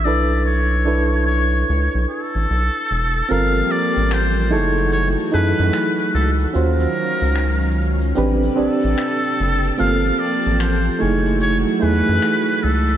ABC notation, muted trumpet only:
X:1
M:4/4
L:1/8
Q:"Swing 16ths" 1/4=74
K:F#
V:1 name="Muted trumpet"
=d c2 c2 =A3 | =f =d ^B c c =B2 =A | A4 z =A3 | =f =d ^B c c =B2 =A |]